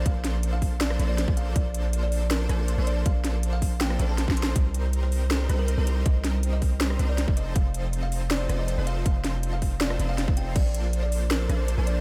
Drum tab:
CC |------------------------------------------------|------------------------------------------------|------------------------------------------------|------------------------------------------------|
HH |x-----x-----x-----o-----x-----x-----x-----x-----|x-----x-----x-----o-----x-----x-----x-----x-----|x-----x-----x-----o-----x-----x-----x-----x-----|x-----x-----x-----o-----x-----x-----x-----x-----|
SD |------o-----------------o--r--------o-----------|------------------------o-----r-----------------|------o-----------------o--r--------o---o---o---|------------------------o-----r-----------------|
BD |o-----------------o--------------------o--------|o-----------------------------------------------|o-----------------o--------------------o--------|o-----------------------------------------------|

CC |------------------------------------------------|------------------------------------------------|------------------------------------------------|x-----------------------------------------------|
HH |x-----x-----x-----o-----x-----x-----x-----x-----|x-----x-----x-----o-----x-----x-----x-----x-----|x-----x-----x-----o-----x-----x-----x-----x-----|x-----x-----x-----o-----x-----x-----x-----x-----|
SD |------o-----------------o--r--------o-----------|------------------------o-----r-----------------|------o-----------------o--r--------o-----------|------------------------o-----r-----------------|
BD |o-----------------o--------------------o--------|o-----------------------------------------------|o-----------------o--------------------o--------|o-----------------------------------------------|